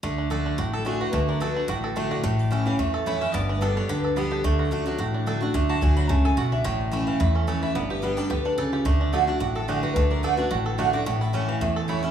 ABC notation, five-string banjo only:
X:1
M:4/4
L:1/8
Q:"Swing" 1/4=218
K:Dlyd
V:1 name="Five-string banjo"
A, D A D F A A, F | A, D A D F A A, F | A,2 C E, A, A E C | B, D A D =G A B, G |
A, F A, F, F D A F | A, F D F, A, A F D | A,2 A, E, E C A E | B, =G B, =G, G D A G |
A, D A D F A A, F | A, D A D F A A, F | A, E C E, A, A E C |]